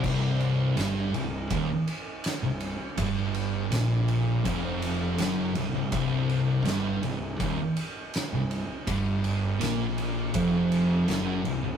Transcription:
<<
  \new Staff \with { instrumentName = "Distorted electric guitar" } { \clef bass \time 4/4 \key c \minor \tempo 4 = 82 c,4 g,8 c,8 ees,16 r4 c,8 r16 | g,4 bes,4 f,4 fis,8 c,16 c,16 | c,4 g,8 c,8 ees,16 r4 c,8 r16 | g,4 bes,4 f,4 fis,8 c,16 c,16 | }
  \new Staff \with { instrumentName = "Distorted electric guitar" } { \clef bass \time 4/4 \key c \minor c,4 g,8 c,8 ees,16 r4 c,8 r16 | g,4 bes,4 f,4 fis,8 c,16 c,16 | c,4 g,8 c,8 ees,16 r4 c,8 r16 | g,4 bes,4 f,4 fis,8 c,16 c,16 | }
  \new Staff \with { instrumentName = "Fingered electric bass" } { \clef bass \time 4/4 \key c \minor c,,4 g,,8 c,,8 ees,,16 r4 c,,8 r16 | g,,4 bes,,4 f,,4 fis,,8 c,,16 c,,16 | c,,4 g,,8 c,,8 ees,,16 r4 c,,8 r16 | g,,4 bes,,4 f,,4 fis,,8 c,,16 c,,16 | }
  \new DrumStaff \with { instrumentName = "Drums" } \drummode { \time 4/4 <cymc bd>8 cymr8 <cymr sn>8 cymr8 <bd cymr>8 cymr8 <cymr sn>8 cymr8 | <bd cymr>8 cymr8 <cymr sn>8 cymr8 <bd cymr>8 cymr8 <cymr sn>8 cymr8 | <bd cymr>8 cymr8 <cymr sn>8 cymr8 <bd cymr>8 cymr8 <cymr sn>8 cymr8 | <bd cymr>8 cymr8 <cymr sn>8 cymr8 <bd cymr>8 cymr8 <cymr sn>8 cymr8 | }
>>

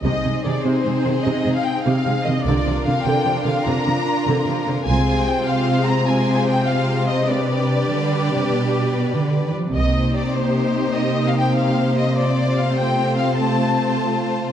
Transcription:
<<
  \new Staff \with { instrumentName = "Violin section" } { \time 12/8 \key aes \lydian \tempo 4. = 99 ees''4 d''8 c''4. ees''8. f''16 g''8 f''4 ees''8 | d''4 f''8 g''4 f''8 bes''2~ bes''8 r8 | aes''4 g''8 f''4 bes''8 aes''4 g''8 f''4 ees''8 | d''1~ d''4. r8 |
ees''4 d''8 c''4. ees''8. f''16 g''8 f''4 ees''8 | d''4 f''8 g''4 f''8 a''2~ a''8 r8 | }
  \new Staff \with { instrumentName = "Violin section" } { \time 12/8 \key aes \lydian << { aes'1. | bes'1. | c''4. c''4. c''4. c''4. | b'1~ b'4. r8 |
c''1.~ | c''1. | } \\ { ees'1. | f'1. | f'4. f'4. f'4. f'4. | g'1~ g'4. r8 |
g'1. | f'1. | } >> }
  \new Staff \with { instrumentName = "Viola section" } { \clef bass \time 12/8 \key aes \lydian << { c'1. | d'1. | c'4. c'4. c'4. c'4. | d'1~ d'4. r8 |
ees'1. | c'1. | } \\ { c8 aes8 ees8 c8 aes8 ees8 c8 aes8 r8 c8 aes8 ees8 | d8 f8 d8 d8 f8 d8 d8 f8 r8 d8 f8 d8 | aes4. aes4. aes4. aes4. | g1~ g4. r8 |
bes1.~ | bes4. a1~ a8 | } >> }
  \new Staff \with { instrumentName = "Cello section" } { \clef bass \time 12/8 \key aes \lydian c8 c8 c8 c8 c8 c8 c8 c8 r8 c8 c8 c8 | c8 c8 c8 c8 c8 c8 c8 c8 r8 c8 c8 c8 | c1.~ | c4. d4 c8 b,4. d8. ees16 f8 |
c1.~ | c1. | }
  \new Staff \with { instrumentName = "Double bass section" } { \clef bass \time 12/8 \key aes \lydian c,8 r1 r4. | c,8 r1 r4. | c,4 r1 r4 | r1. |
c,4 r1 r4 | r1. | }
>>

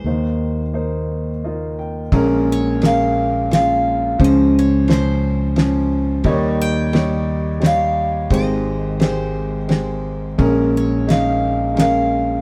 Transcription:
<<
  \new Staff \with { instrumentName = "Steel-string acoustic guitar" } { \time 3/4 \key bes \dorian \tempo 4 = 87 c''2~ c''8 r8 | r8 des''8 f''4 f''4 | ees''8 des''8 c''4. r8 | r8 g''4. f''4 |
ees''4 c''4. r8 | r8 des''8 f''4 f''4 | }
  \new Staff \with { instrumentName = "Upright piano" } { \time 3/4 \key bes \dorian << { r2 ees''8 g''8 | r2. | r2. | r2. |
r2. | r2. | } \\ { <bes ees' c''>4 <bes ees' c''>4 <bes ees' f'>4 | <aes des' bes'>4 <aes des' bes'>4 <aes des' f'>4 | <f des' c''>4 <f des' c''>4 <f des' c''>4 | <g ees' des''>4 <g ees' des''>4 <g ees' des''>4 |
<aes g' c''>4 <aes g' c''>4 <aes g' c''>4 | <aes des' bes'>4 <aes des' ees'>4 <aes des' bes'>4 | } >> }
  \new Staff \with { instrumentName = "Upright piano" } { \clef bass \time 3/4 \key bes \dorian <ees, ees>2. | <bes,, bes,>2. | <des, des>2. | <ees, ees>2. |
<aes,, aes,>2. | <bes,, bes,>2. | }
  \new Staff \with { instrumentName = "Fingered electric bass" } { \clef bass \time 3/4 \key bes \dorian ees,2. | bes,,2. | des,2. | ees,2. |
aes,,2. | bes,,2. | }
  \new DrumStaff \with { instrumentName = "Drums" } \drummode { \time 3/4 r4 r4 r4 | <bd cymr>4 <cymr sn>4 <cymr sn>4 | <bd cymr>4 <cymr sn>4 <cymr sn>4 | <bd cymr>4 <cymr sn>4 <cymr sn>4 |
<bd cymr>4 <cymr sn>4 <cymr sn>4 | <bd cymr>4 <cymr sn>4 <cymr sn>4 | }
>>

